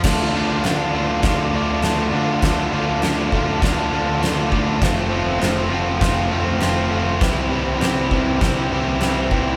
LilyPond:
<<
  \new Staff \with { instrumentName = "Transistor combo organ" } { \time 4/4 \key d \minor \tempo 4 = 100 <f' a' d''>1~ | <f' a' d''>1 | <f' a' c''>1 | <e' g' c''>1 | }
  \new Staff \with { instrumentName = "Overdriven electric guitar" } { \time 4/4 \key d \minor <d a d' f'>8 <d a d' f'>8 <d a d' f'>8 <d a d' f'>8 <d a d' f'>8 <d a d' f'>8 <d a d' f'>8 <d a d' f'>8 | <d a d' f'>8 <d a d' f'>8 <d a d' f'>8 <d a d' f'>8 <d a d' f'>8 <d a d' f'>8 <d a d' f'>8 <d a d' f'>8 | <f a c' f'>8 <f a c' f'>8 <f a c' f'>8 <f a c' f'>8 <f a c' f'>8 <f a c' f'>8 <f a c' f'>8 <f a c' f'>8 | <c e g c' e'>8 <c e g c' e'>8 <c e g c' e'>8 <c e g c' e'>8 <c e g c' e'>8 <c e g c' e'>8 <c e g c' e'>8 <c e g c' e'>8 | }
  \new Staff \with { instrumentName = "Picked electric bass" } { \clef bass \time 4/4 \key d \minor d,8 d,8 d,8 d,8 d,8 d,8 d,8 d,8 | d,8 d,8 d,8 d,8 d,8 d,8 d,8 d,8 | f,,8 f,,8 f,,8 f,,8 f,,8 f,,8 f,,8 f,,8 | c,8 c,8 c,8 c,8 c,8 c,8 c,8 c,8 | }
  \new DrumStaff \with { instrumentName = "Drums" } \drummode { \time 4/4 <cymc bd sn>4 <cymc sn>4 <cymc bd sn>4 <cymc sn>4 | <cymc bd sn>4 <cymc sn>8 bd8 <cymc bd sn>4 <cymc sn>8 bd8 | <cymc bd sn>4 <cymc sn>4 <cymc bd sn>4 <cymc sn>4 | <cymc bd sn>4 <cymc sn>8 bd8 <cymc bd sn>4 <cymc sn>8 bd8 | }
>>